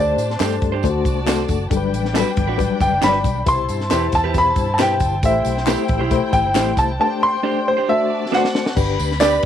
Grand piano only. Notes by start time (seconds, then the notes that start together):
0.00 D5
2.81 G5
3.04 B5
3.48 C6
4.15 A5
4.38 B5
4.74 A5
4.82 G5
5.25 E5
6.33 G5
6.79 A5
7.01 A5
7.23 C6
7.68 C5
7.89 E5
8.35 F#5
9.20 D5